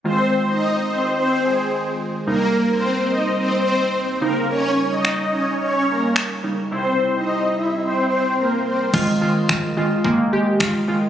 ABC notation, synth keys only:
X:1
M:4/4
L:1/8
Q:1/4=108
K:Fm
V:1 name="Synth keys" clef=bass
[E,A,F]8 | [E,,C,G,E]6- [E,,C,G,E] [D,G,E]- | [D,G,E]6- [D,G,E] [D,G,E] | [C,G,=E]8 |
[E,A,F] [E,A,F] [E,A,F] [E,A,F] [E,A,B,] [E,A,G] [E,A,F] [E,A,F] |]